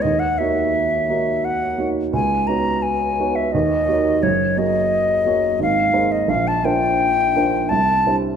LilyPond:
<<
  \new Staff \with { instrumentName = "Flute" } { \time 3/4 \key dis \phrygian \tempo 4 = 86 dis''16 fis''16 e''4. fis''8. r16 | gis''8 ais''8 gis''8. e''16 dis''4 | cis''8 dis''4. eis''8. dis''16 | eis''16 a''16 g''4. a''8. r16 | }
  \new Staff \with { instrumentName = "Grand piano" } { \time 3/4 \key dis \phrygian dis,8 <ais dis' fis' cis''>4 <ais dis' fis' cis''>4 <ais dis' fis' cis''>8 | cis,8 <b dis' fis' cis''>4 <b dis' fis' cis''>8 dis,8 <ais fis' ais' cis''>8 | fis,,8 <ais fis' gis' cis''>4 <ais fis' gis' cis''>8 gis,,8 <ais dis' gis' bis'>8 | ais,,8 <ais d' eis' bis'>4 <ais d' eis' bis'>8 c,8 <g d' e' c''>8 | }
>>